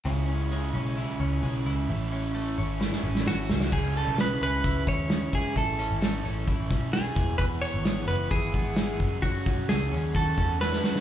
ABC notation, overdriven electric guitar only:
X:1
M:4/4
L:1/8
Q:1/4=131
K:C#m
V:1 name="Overdriven electric guitar"
[C,G,CE] [G,CE] [C,G,CE] [G,CE] [C,G,CE] [G,CE] [C,G,CE] [G,CE] | [A,,E,A,CE] [A,CE] [E,A,CE] [A,CE] [A,,E,A,CE] [A,CE] [E,A,CE] [G,CE] | [C,G,CE] [G,CE] [C,G,CE] [G,CE] [C,G,CE] [G,CE] [C,G,CE] [G,CE] | [A,,E,A,CE] [A,CE] [A,,E,A,CE] [A,CE] [E,A,CE] [A,CE] [A,,E,A,CE] [G,B,E] |
[E,G,B,E] [G,B,E] [E,G,B,E] [G,B,E] [E,G,B,E] [G,B,E] [E,G,B,E] [A,CF] | [F,A,CF] [A,CF] [F,A,CF] [A,CF] [F,A,CF] [A,CF] [F,A,CF] [A,CF] |]